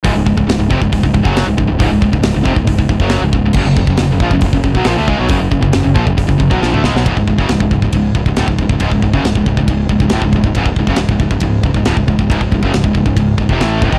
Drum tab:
CC |----------------|----------------|x---------------|----------------|
RD |----------------|----------------|----------------|----------------|
HH |o---o---o---o---|o---o---o---o---|----o---o---o---|o---o---o-------|
SD |----o-------o---|----o-------o---|----o-------o---|----o-------o-oo|
T2 |----------------|----------------|----------------|-------------o--|
BD |o-oo--oooooo--o-|o-oo--oooooo--o-|o-oo--oooooo--o-|o-oo--oooooo----|

CC |----------------|----------------|----------------|----------------|
RD |b---b---b---b---|b---b---b---b---|b---b---b---b---|b---b---b---b---|
HH |----------------|----------------|----------------|----------------|
SD |----o-------o---|----o-------o---|----o-------o---|----o-------o---|
T2 |----------------|----------------|----------------|----------------|
BD |oooo-oooo-oo-ooo|oooo-oooo-oo-ooo|oooo-oooo-oo-ooo|oooo-oooo-oo--oo|